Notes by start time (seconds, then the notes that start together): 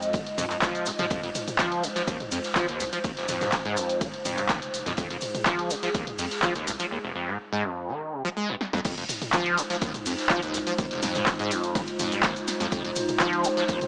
Already playing: F2 G#3 D#4 F4 D#5
0.02 closed hi-hat, cabasa
0.13 D#3, kick, closed hi-hat, cabasa
0.27 closed hi-hat
0.38 F2, closed hi-hat, mid tom, open hi-hat, cabasa
0.50 F2, clap, closed hi-hat, cabasa
0.61 D#1 F3, kick, snare, clap, closed hi-hat, cabasa
0.75 closed hi-hat, cabasa
0.86 D#2, closed hi-hat, open hi-hat, cabasa
0.98 F3, snare, closed hi-hat, mid tom, cabasa
1.10 F1 F2 C5, kick, closed hi-hat, cabasa
1.23 F1 F2, closed hi-hat
1.35 closed hi-hat, mid tom, open hi-hat, cabasa
1.48 closed hi-hat, mid tom, cabasa
1.59 F3, kick, snare, clap, closed hi-hat, cabasa
1.72 closed hi-hat
1.83 C3, closed hi-hat, open hi-hat, cabasa
1.96 F3, snare, closed hi-hat, cabasa
2.07 D#2, kick, closed hi-hat, cabasa
2.20 closed hi-hat, mid tom
2.31 F2, open hi-hat, cabasa
2.44 snare, closed hi-hat, cabasa
2.56 F3, kick, snare, clap, closed hi-hat, cabasa
2.68 D#2, closed hi-hat, cabasa
2.80 C2 C3, closed hi-hat, open hi-hat, cabasa
2.93 F3, closed hi-hat, cabasa
3.04 F1 D#2, kick, closed hi-hat, cabasa
3.17 F1, snare, closed hi-hat
3.28 F2, closed hi-hat, mid tom, open hi-hat, cabasa
3.41 G#2, snare, closed hi-hat, mid tom, cabasa
3.52 kick, snare, clap, closed hi-hat, cabasa
3.65 G#2, closed hi-hat
3.76 F2, closed hi-hat, open hi-hat, cabasa
3.89 closed hi-hat, cabasa
4.01 D#3, kick, closed hi-hat, cabasa
4.14 closed hi-hat
4.25 F1 F2, closed hi-hat, mid tom, open hi-hat, cabasa
4.37 G#2, clap, closed hi-hat, cabasa
4.49 D#2, kick, snare, clap, closed hi-hat, cabasa
4.62 closed hi-hat, cabasa
4.74 F1, closed hi-hat, open hi-hat, cabasa
4.86 F1 F2, snare, closed hi-hat, mid tom, cabasa
4.97 F1 F2 G#4, kick, closed hi-hat, cabasa
5.10 F1 F2, closed hi-hat
5.21 closed hi-hat, mid tom, open hi-hat, cabasa
5.35 closed hi-hat, mid tom, cabasa
5.46 F3, kick, snare, clap, closed hi-hat, cabasa
5.59 closed hi-hat
5.70 C3, closed hi-hat, open hi-hat, cabasa
5.83 F3, snare, closed hi-hat, cabasa
5.94 D#2, kick, closed hi-hat, cabasa
6.07 closed hi-hat, mid tom
6.18 F2, open hi-hat, cabasa
6.31 snare, closed hi-hat, cabasa
6.43 F3, kick, snare, clap, closed hi-hat, cabasa
6.55 D#2, closed hi-hat, cabasa
6.67 C2 C3, closed hi-hat, open hi-hat, cabasa
6.79 F3, closed hi-hat, cabasa
6.91 D#2
7.04 F1
7.15 F2
7.28 G#2
7.52 G#2
7.64 F2
7.88 D#3
8.12 C3
8.25 F3
8.37 G#3
8.49 F2
8.61 snare
8.73 F2, snare
8.85 F1 F2 G#3 D#4 F4 C5, kick, closed hi-hat, crash, cabasa
8.97 F1 F2, closed hi-hat
9.09 closed hi-hat, mid tom, open hi-hat, cabasa
9.22 closed hi-hat, mid tom, cabasa
9.33 F3, kick, snare, clap, closed hi-hat, cabasa
9.46 closed hi-hat
9.58 C3, closed hi-hat, open hi-hat, cabasa
9.70 F3, snare, closed hi-hat, cabasa
9.81 D#2, kick, closed hi-hat, cabasa
9.94 closed hi-hat, mid tom, cabasa
10.06 F2, open hi-hat, cabasa
10.18 snare, closed hi-hat, cabasa
10.30 F3, kick, snare, clap, closed hi-hat, cabasa
10.42 D#2, closed hi-hat, cabasa
10.54 C2 C3, closed hi-hat, open hi-hat, cabasa
10.67 F3, closed hi-hat, cabasa
10.78 F1 D#2, kick, closed hi-hat, cabasa
10.91 F1, snare, closed hi-hat
11.02 F2, snare, closed hi-hat, mid tom, open hi-hat, cabasa
11.15 G#2, snare, closed hi-hat, mid tom, cabasa
11.26 kick, snare, clap, closed hi-hat, cabasa
11.39 G#2, closed hi-hat
11.51 F2, closed hi-hat, open hi-hat, cabasa
11.63 closed hi-hat, cabasa
11.75 D#3, kick, snare, closed hi-hat, cabasa
11.87 closed hi-hat, cabasa
11.99 F2, closed hi-hat, mid tom, open hi-hat, cabasa
12.12 G#2, closed hi-hat, cabasa
12.23 D#1 D#2, kick, snare, clap, closed hi-hat, cabasa
12.36 closed hi-hat, cabasa
12.48 snare, closed hi-hat, open hi-hat, cabasa
12.60 F2, snare, closed hi-hat, cabasa
12.72 F1 F2, kick, closed hi-hat, cabasa
12.84 F1 F2, closed hi-hat
12.96 closed hi-hat, mid tom, open hi-hat, cabasa
13.08 closed hi-hat, mid tom, cabasa
13.20 F3, kick, snare, clap, closed hi-hat, cabasa
13.33 closed hi-hat
13.44 C3, closed hi-hat, open hi-hat, cabasa
13.57 F3, snare, closed hi-hat, cabasa
13.68 D#2, kick, closed hi-hat, cabasa
13.81 closed hi-hat, mid tom, cabasa